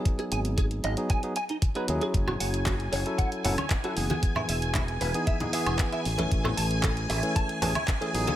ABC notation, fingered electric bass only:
X:1
M:4/4
L:1/16
Q:1/4=115
K:F#dor
V:1 name="Fingered electric bass" clef=bass
z2 G,,,4 G,,, z6 z D,, z | F,,,2 F,,,4 F,,, z3 F,,, z3 F,,, z | z2 E,,,4 E,,, z4 E,,, z2 A,,,2 | A,,,2 A,,,4 A,,, z3 A,,, z3 A,,, z |]